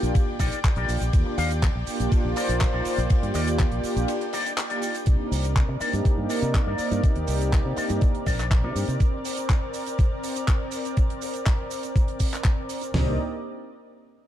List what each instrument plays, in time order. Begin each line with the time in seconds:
Already playing: analog synth pad D5 G5
0.02 fingered electric bass A#1, analog synth pad A#3 D4 F4 G4, closed hi-hat, shaker, maracas
0.15 muted clean electric guitar stroke, kick, closed hi-hat, ride, maracas, shaker
0.39 fingered electric bass A#1, clean electric guitar D#4 G4 A#4 D5, kick, open hi-hat, maracas, shaker
0.52 closed hi-hat, maracas, shaker
0.64 kick, clap, closed hi-hat, ride, maracas, shaker
0.76 fingered electric bass A#1, analog synth pad A#3 D4 F4 G4, clean electric guitar D#4 G4 A#4 D5, closed hi-hat
0.89 fingered electric bass A#1, open hi-hat, maracas, shaker
1.01 fingered electric bass A#1, closed hi-hat, shaker, maracas
1.13 fingered electric bass D#2, analog synth pad A#3 D4 F4 G4, kick, closed hi-hat, ride, shaker, maracas
1.26 muted clean electric guitar stroke
1.38 fingered electric bass D#2, clean electric guitar D#4 G4 A#4 F5, open hi-hat, maracas, shaker
1.50 closed hi-hat, maracas, shaker
1.62 muted clean electric guitar stroke, kick, clap, closed hi-hat, ride, maracas, shaker
1.75 fingered electric bass A#1
1.87 analog synth pad A#3 D4 F4 G4, open hi-hat, maracas, shaker
2.00 fingered electric bass A#1, analog synth pad A#3 D4 F4 G4, closed hi-hat, maracas, shaker
2.11 muted clean electric guitar stroke, kick, closed hi-hat, ride, maracas, shaker
2.24 fingered electric bass A#1, analog synth pad A#3 F4 C5 D5
2.36 clean electric guitar D#4 G4 A#4 D5, open hi-hat, maracas, shaker
2.49 fingered electric bass A#1, closed hi-hat, maracas, shaker
2.61 kick, clap, closed hi-hat, ride, maracas, shaker
2.73 fingered electric bass A#1, clean electric guitar D#4 G4 A#4 D5
2.85 open hi-hat, maracas, shaker
2.98 fingered electric bass A#1, closed hi-hat, maracas, shaker
3.09 analog synth pad A#3 F4 G4 D5, kick, closed hi-hat, ride, maracas, shaker
3.22 fingered electric bass G2, muted clean electric guitar stroke, closed hi-hat
3.34 fingered electric bass D#2, clean electric guitar D#4 G4 A#4 D5, open hi-hat, maracas, shaker
3.47 closed hi-hat, maracas, shaker
3.59 muted clean electric guitar stroke, kick, clap, closed hi-hat, ride, maracas, shaker
3.71 fingered electric bass A#1, closed hi-hat
3.84 analog synth pad A#3 D4 F4 G4, muted fingered electric bass stroke, open hi-hat, shaker, maracas
3.96 fingered electric bass A#1, analog synth pad A#3 D4 F4 G4, closed hi-hat, maracas, shaker
4.08 closed hi-hat, ride, maracas, shaker
4.21 closed hi-hat
4.33 clean electric guitar D#4 G4 A#4 D5, open hi-hat, maracas, shaker
4.46 closed hi-hat, maracas, shaker
4.57 clap, closed hi-hat, ride, maracas, shaker
4.70 analog synth pad A#3 D4 F4 G4, clean electric guitar D#4 G4 A#4 D5, closed hi-hat
4.82 open hi-hat, shaker, maracas
4.95 closed hi-hat, maracas, shaker
5.06 fingered electric bass C2, analog synth pad A#3 C4 D4 D#4 G4 A#4 D5, kick, closed hi-hat, shaker, maracas
5.31 fingered electric bass C2, open hi-hat, maracas, shaker
5.44 closed hi-hat, maracas, shaker
5.56 kick, clap, closed hi-hat, maracas, shaker
5.69 fingered electric bass C3, muted clean electric guitar stroke
5.80 analog synth pad A#3 D4 D#4 G4, clean electric guitar D#4 A#4 D5, muted fingered electric bass stroke, open hi-hat, shaker, maracas
5.93 fingered electric bass G2, analog synth pad A#3 D4 D#4 G4, closed hi-hat, shaker, maracas
6.05 muted clean electric guitar stroke, muted fingered electric bass stroke, kick, closed hi-hat, maracas, shaker
6.17 fingered electric bass G2, analog synth pad A#3 D#4 A#4 D5, muted clean electric guitar stroke
6.29 clean electric guitar D#4 A#4 D5, open hi-hat, maracas, shaker
6.42 fingered electric bass C3, closed hi-hat, maracas, shaker
6.54 kick, clap, closed hi-hat, maracas, shaker
6.67 fingered electric bass G2, clean electric guitar D#4 A#4 D5
6.78 muted fingered electric bass stroke, open hi-hat, maracas, shaker
6.91 fingered electric bass G2, closed hi-hat, maracas, shaker
7.02 analog synth pad A#3 D#4 G4 D5, kick, closed hi-hat, maracas, shaker
7.15 fingered electric bass D#2, closed hi-hat
7.27 fingered electric bass C2, open hi-hat, maracas, shaker
7.41 closed hi-hat, maracas, shaker
7.53 kick, clap, closed hi-hat, maracas, shaker
7.65 fingered electric bass C3, muted clean electric guitar stroke
7.77 analog synth pad A#3 D4 D#4 G4, clean electric guitar D#4 A#4 D5, muted fingered electric bass stroke, open hi-hat, maracas, shaker
7.89 fingered electric bass G2, analog synth pad A#3 D4 D#4 G4, closed hi-hat, maracas, shaker
8.01 muted clean electric guitar stroke, kick, closed hi-hat, maracas, shaker
8.14 muted clean electric guitar stroke, closed hi-hat
8.26 fingered electric bass A#1, clean electric guitar D#4 A#4 D5, kick, open hi-hat, shaker, maracas
8.39 clap, closed hi-hat, shaker, maracas
8.51 kick, clap, closed hi-hat, maracas, shaker
8.63 fingered electric bass C3, analog synth pad A#3 D4 D#4 G4, clean electric guitar D#4 A#4 D5
8.75 fingered electric bass G2, open hi-hat, maracas, shaker
8.88 fingered electric bass C3, closed hi-hat, maracas, shaker
9.00 kick, closed hi-hat, maracas, shaker
9.25 open hi-hat, maracas, shaker
9.37 closed hi-hat, maracas, shaker
9.50 kick, clap, closed hi-hat, maracas, shaker
9.74 open hi-hat, maracas, shaker
9.86 closed hi-hat, maracas, shaker
9.99 kick, closed hi-hat, maracas, shaker
10.24 open hi-hat, maracas, shaker
10.36 closed hi-hat, shaker, maracas
10.47 kick, clap, closed hi-hat, maracas, shaker
10.71 open hi-hat, maracas, shaker
10.85 closed hi-hat, maracas, shaker
10.97 kick, closed hi-hat, maracas, shaker
11.10 closed hi-hat
11.22 open hi-hat, maracas, shaker
11.34 closed hi-hat, maracas, shaker
11.46 kick, clap, closed hi-hat, maracas, shaker
11.71 open hi-hat, maracas, shaker
11.83 closed hi-hat, shaker, maracas
11.96 kick, closed hi-hat, maracas, shaker
12.08 closed hi-hat
12.20 kick, open hi-hat, maracas, shaker
12.33 clap, closed hi-hat, maracas, shaker
12.44 kick, clap, closed hi-hat, maracas, shaker
12.69 open hi-hat, maracas, shaker
12.81 closed hi-hat, maracas, shaker
12.92 fingered electric bass C2, analog synth pad A#3 C4 D4 D#4 G4 A#4 D5 D#5, snare, floor tom, open hi-hat